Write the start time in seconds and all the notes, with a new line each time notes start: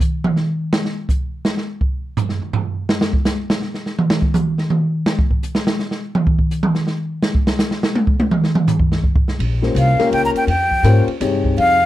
0.00 kick, hi-hat pedal
0.24 mid tom
0.36 snare
0.73 snare
0.85 snare
1.09 kick, hi-hat pedal
1.45 snare
1.57 snare
1.81 kick
2.17 floor tom, hi-hat pedal
2.29 snare
2.42 floor tom
2.53 floor tom
2.89 snare
3.01 snare
3.13 kick
3.25 snare, hi-hat pedal
3.50 snare
3.62 snare
3.74 snare
3.86 snare
3.99 mid tom
4.10 snare
4.22 kick
4.34 hi-hat pedal, mid tom
4.58 snare
4.70 mid tom
5.06 snare
5.19 kick
5.31 kick
5.43 hi-hat pedal
5.55 snare
5.67 snare
5.79 snare
5.91 snare
6.15 mid tom
6.27 kick
6.39 kick
6.51 hi-hat pedal
6.63 mid tom
6.75 snare
6.87 snare
7.22 snare
7.35 kick
7.47 snare
7.59 snare, hi-hat pedal
7.71 snare
7.83 snare
7.95 high tom
8.07 kick
8.20 high tom
8.31 mid tom
8.44 snare
8.55 mid tom
8.68 floor tom, hi-hat pedal
8.79 kick
8.92 snare
9.04 kick
9.16 kick
9.28 snare
9.39 A#1, ride
9.62 A#3 C#4 F4 G4 C5, snare
9.75 C2 F5, hi-hat pedal, ride
9.98 A#3 C#4 F4 G4 A#4, muted upright bass stroke, snare, ride
10.11 C#2 G5, ride
10.25 A#5
10.34 G5, muted upright bass stroke, ride
10.47 F2 G5, ride
10.71 kick
10.83 G#2 A#3 C#4 F4 G4 C5, hi-hat pedal, ride
11.07 muted upright bass stroke, ride
11.20 G2 C3 D#4 G4 G#4 C#5, snare, hi-hat pedal, ride
11.44 kick
11.57 F2 F5, ride